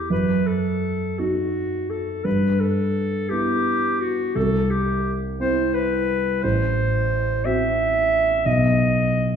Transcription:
0, 0, Header, 1, 3, 480
1, 0, Start_track
1, 0, Tempo, 716846
1, 70, Time_signature, 6, 3, 24, 8
1, 1509, Tempo, 700935
1, 3429, Tempo, 679502
1, 6468, End_track
2, 0, Start_track
2, 0, Title_t, "Clarinet"
2, 0, Program_c, 0, 71
2, 76, Note_on_c, 0, 71, 46
2, 311, Note_on_c, 0, 69, 48
2, 321, Note_off_c, 0, 71, 0
2, 795, Note_on_c, 0, 66, 50
2, 805, Note_off_c, 0, 69, 0
2, 1270, Note_on_c, 0, 69, 48
2, 1280, Note_off_c, 0, 66, 0
2, 1505, Note_on_c, 0, 71, 50
2, 1515, Note_off_c, 0, 69, 0
2, 1747, Note_on_c, 0, 69, 55
2, 1757, Note_off_c, 0, 71, 0
2, 2220, Note_on_c, 0, 67, 58
2, 2231, Note_off_c, 0, 69, 0
2, 2704, Note_on_c, 0, 66, 52
2, 2714, Note_off_c, 0, 67, 0
2, 2947, Note_on_c, 0, 69, 60
2, 2957, Note_off_c, 0, 66, 0
2, 3187, Note_on_c, 0, 67, 48
2, 3197, Note_off_c, 0, 69, 0
2, 3501, Note_off_c, 0, 67, 0
2, 3673, Note_on_c, 0, 72, 64
2, 3912, Note_on_c, 0, 71, 61
2, 3922, Note_off_c, 0, 72, 0
2, 4397, Note_on_c, 0, 72, 69
2, 4407, Note_off_c, 0, 71, 0
2, 5119, Note_on_c, 0, 76, 86
2, 5129, Note_off_c, 0, 72, 0
2, 5828, Note_on_c, 0, 75, 65
2, 5838, Note_off_c, 0, 76, 0
2, 6468, Note_off_c, 0, 75, 0
2, 6468, End_track
3, 0, Start_track
3, 0, Title_t, "Grand piano"
3, 0, Program_c, 1, 0
3, 0, Control_c, 1, 64, 127
3, 0, Note_on_c, 1, 64, 25
3, 0, Note_on_c, 1, 67, 29
3, 68, Note_on_c, 1, 42, 36
3, 83, Note_off_c, 1, 67, 0
3, 83, Control_c, 1, 64, 0
3, 88, Note_off_c, 1, 64, 0
3, 175, Control_c, 1, 64, 127
3, 800, Note_on_c, 1, 63, 27
3, 803, Note_on_c, 1, 66, 29
3, 1482, Note_off_c, 1, 42, 0
3, 1486, Note_off_c, 1, 63, 0
3, 1488, Note_off_c, 1, 66, 0
3, 1504, Note_on_c, 1, 43, 37
3, 1520, Control_c, 1, 64, 0
3, 1640, Control_c, 1, 64, 127
3, 2233, Note_on_c, 1, 59, 29
3, 2237, Note_on_c, 1, 64, 32
3, 2919, Note_off_c, 1, 43, 0
3, 2923, Note_off_c, 1, 59, 0
3, 2925, Note_off_c, 1, 64, 0
3, 2947, Note_on_c, 1, 36, 42
3, 2963, Control_c, 1, 64, 0
3, 3062, Control_c, 1, 64, 127
3, 3671, Note_on_c, 1, 60, 32
3, 3674, Note_on_c, 1, 64, 35
3, 4370, Note_off_c, 1, 36, 0
3, 4372, Note_off_c, 1, 60, 0
3, 4373, Note_off_c, 1, 64, 0
3, 4405, Note_on_c, 1, 33, 47
3, 4412, Control_c, 1, 64, 0
3, 4519, Control_c, 1, 64, 127
3, 5119, Note_on_c, 1, 60, 35
3, 5119, Note_on_c, 1, 66, 37
3, 5803, Note_off_c, 1, 60, 0
3, 5803, Note_off_c, 1, 66, 0
3, 5805, Note_off_c, 1, 33, 0
3, 5830, Note_on_c, 1, 35, 46
3, 5843, Control_c, 1, 64, 0
3, 5942, Control_c, 1, 64, 127
3, 6468, Note_off_c, 1, 35, 0
3, 6468, End_track
0, 0, End_of_file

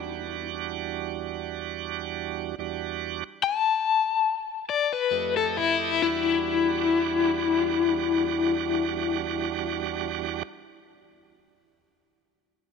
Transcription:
0, 0, Header, 1, 3, 480
1, 0, Start_track
1, 0, Key_signature, 1, "minor"
1, 0, Tempo, 765306
1, 1628, Tempo, 820793
1, 1629, Time_signature, 4, 2, 24, 8
1, 2588, Tempo, 865801
1, 3068, Tempo, 924499
1, 7025, End_track
2, 0, Start_track
2, 0, Title_t, "Overdriven electric guitar"
2, 0, Program_c, 0, 29
2, 2119, Note_on_c, 0, 81, 90
2, 2814, Note_off_c, 0, 81, 0
2, 2842, Note_on_c, 0, 74, 80
2, 2959, Note_off_c, 0, 74, 0
2, 2970, Note_on_c, 0, 71, 75
2, 3192, Note_off_c, 0, 71, 0
2, 3206, Note_on_c, 0, 69, 80
2, 3305, Note_off_c, 0, 69, 0
2, 3311, Note_on_c, 0, 64, 76
2, 3537, Note_off_c, 0, 64, 0
2, 3546, Note_on_c, 0, 64, 86
2, 5837, Note_off_c, 0, 64, 0
2, 7025, End_track
3, 0, Start_track
3, 0, Title_t, "Tonewheel organ"
3, 0, Program_c, 1, 16
3, 0, Note_on_c, 1, 40, 61
3, 0, Note_on_c, 1, 55, 59
3, 0, Note_on_c, 1, 62, 55
3, 0, Note_on_c, 1, 66, 64
3, 1598, Note_off_c, 1, 40, 0
3, 1600, Note_off_c, 1, 55, 0
3, 1602, Note_off_c, 1, 62, 0
3, 1604, Note_off_c, 1, 66, 0
3, 1622, Note_on_c, 1, 40, 76
3, 1625, Note_on_c, 1, 55, 66
3, 1628, Note_on_c, 1, 62, 69
3, 1631, Note_on_c, 1, 66, 77
3, 2001, Note_off_c, 1, 40, 0
3, 2002, Note_off_c, 1, 55, 0
3, 2004, Note_off_c, 1, 62, 0
3, 2005, Note_off_c, 1, 66, 0
3, 3071, Note_on_c, 1, 41, 65
3, 3073, Note_on_c, 1, 57, 58
3, 3074, Note_on_c, 1, 67, 71
3, 3074, Note_on_c, 1, 75, 55
3, 3540, Note_off_c, 1, 41, 0
3, 3541, Note_off_c, 1, 57, 0
3, 3541, Note_off_c, 1, 67, 0
3, 3541, Note_off_c, 1, 75, 0
3, 3543, Note_on_c, 1, 55, 65
3, 3543, Note_on_c, 1, 62, 64
3, 3543, Note_on_c, 1, 66, 82
3, 3544, Note_on_c, 1, 40, 74
3, 5833, Note_off_c, 1, 55, 0
3, 5833, Note_off_c, 1, 66, 0
3, 5834, Note_off_c, 1, 40, 0
3, 5834, Note_off_c, 1, 62, 0
3, 7025, End_track
0, 0, End_of_file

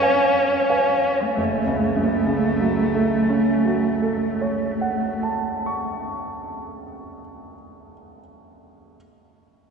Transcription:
0, 0, Header, 1, 3, 480
1, 0, Start_track
1, 0, Key_signature, 3, "minor"
1, 0, Tempo, 1342282
1, 490, Time_signature, 4, 2, 24, 8
1, 3470, End_track
2, 0, Start_track
2, 0, Title_t, "Grand piano"
2, 0, Program_c, 0, 0
2, 0, Control_c, 0, 64, 127
2, 0, Note_on_c, 0, 42, 24
2, 0, Note_on_c, 0, 71, 20
2, 0, Note_on_c, 0, 77, 20
2, 0, Note_on_c, 0, 80, 22
2, 6, Note_off_c, 0, 71, 0
2, 6, Note_on_c, 0, 71, 18
2, 8, Note_off_c, 0, 77, 0
2, 8, Note_on_c, 0, 77, 19
2, 10, Note_off_c, 0, 80, 0
2, 10, Note_on_c, 0, 80, 19
2, 233, Note_off_c, 0, 71, 0
2, 234, Note_off_c, 0, 77, 0
2, 235, Note_off_c, 0, 80, 0
2, 249, Note_on_c, 0, 77, 19
2, 250, Note_on_c, 0, 71, 17
2, 254, Note_on_c, 0, 80, 19
2, 478, Note_off_c, 0, 77, 0
2, 479, Note_off_c, 0, 71, 0
2, 481, Note_off_c, 0, 80, 0
2, 490, Note_on_c, 0, 30, 22
2, 498, Control_c, 0, 64, 0
2, 500, Note_off_c, 0, 42, 0
2, 572, Control_c, 0, 64, 127
2, 597, Note_on_c, 0, 37, 21
2, 702, Note_on_c, 0, 42, 21
2, 811, Note_on_c, 0, 49, 20
2, 931, Note_on_c, 0, 54, 19
2, 1052, Note_on_c, 0, 57, 20
2, 1178, Note_on_c, 0, 61, 18
2, 1307, Note_on_c, 0, 66, 17
2, 1438, Note_on_c, 0, 69, 17
2, 1579, Note_on_c, 0, 73, 16
2, 1721, Note_on_c, 0, 78, 16
2, 1871, Note_on_c, 0, 81, 17
2, 1883, Note_off_c, 0, 30, 0
2, 1989, Note_off_c, 0, 37, 0
2, 2025, Note_on_c, 0, 85, 15
2, 2094, Note_off_c, 0, 42, 0
2, 2203, Note_off_c, 0, 49, 0
2, 2323, Note_off_c, 0, 54, 0
2, 2444, Note_off_c, 0, 57, 0
2, 2570, Note_off_c, 0, 61, 0
2, 2699, Note_off_c, 0, 66, 0
2, 2830, Note_off_c, 0, 69, 0
2, 2927, Note_off_c, 0, 78, 0
2, 2928, Note_off_c, 0, 73, 0
2, 2928, Note_off_c, 0, 81, 0
2, 2929, Note_off_c, 0, 85, 0
2, 3206, Control_c, 0, 64, 0
2, 3470, End_track
3, 0, Start_track
3, 0, Title_t, "Cello"
3, 0, Program_c, 1, 42
3, 0, Note_on_c, 1, 61, 38
3, 481, Note_off_c, 1, 61, 0
3, 483, Note_on_c, 1, 57, 31
3, 1875, Note_off_c, 1, 57, 0
3, 3470, End_track
0, 0, End_of_file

